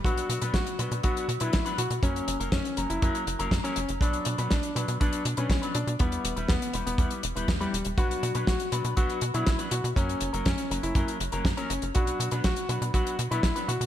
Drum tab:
HH |xxxxxxxxxxxxxxxx|xxxxxxxxxxxxxxxx|xxxxxxxxxxxxxxxx|xxxxxxxxxxxxxxxx|
SD |----o-------o---|----o-------o---|----o-------o---|----o-------o---|
BD |o---o---o---o---|o---o---o---o---|o---o---o---o---|o---o---o---o---|

HH |xxxxxxxxxxxxxxxx|xxxxxxxxxxxxxxxx|xxxxxxxxxxxxxxxx|
SD |----o-------o---|----o-------o---|----o-------o---|
BD |o---o---o---o---|o---o---o---o---|o---o---o---o---|